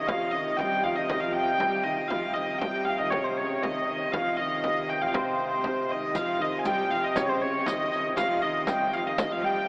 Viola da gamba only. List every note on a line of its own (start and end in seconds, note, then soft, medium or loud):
0.08 0.36 F3 medium
0.34 0.58 D#3 medium
0.59 0.85 G3 medium
0.83 0.98 F3 medium
0.97 1.09 D#3 medium
1.10 1.21 D#3 medium
1.23 1.58 F3 medium
1.59 1.87 G3 medium
1.85 2.10 D#3 medium
2.10 2.28 F3 medium
2.30 2.37 F3 soft
2.36 2.60 D#3 medium
2.61 2.96 G3 medium
2.99 3.14 D#3 medium
3.12 3.23 C#3 medium
3.24 3.36 C3 medium
3.37 3.61 C#3 medium
3.62 3.86 D#3 medium
3.88 4.11 D#3 medium
4.12 4.40 F3 medium
4.39 5.04 D#3 medium
5.02 5.08 F3 medium
5.09 5.15 F3 medium
5.14 5.88 C3 medium
5.89 6.16 D#3 medium
6.14 6.41 F3 medium
6.39 6.65 D#3 medium
6.66 6.89 G3 medium
6.90 7.02 F3 medium
7.17 7.68 C#3 medium
7.66 7.91 D#3 medium
7.92 8.16 D#3 medium
8.17 8.44 F3 medium
8.43 8.70 D#3 medium
8.69 8.94 G3 medium
8.94 9.05 F3 medium
9.06 9.18 D#3 medium
9.19 9.31 D#3 medium
9.31 9.45 F3 medium
9.43 9.68 G3 medium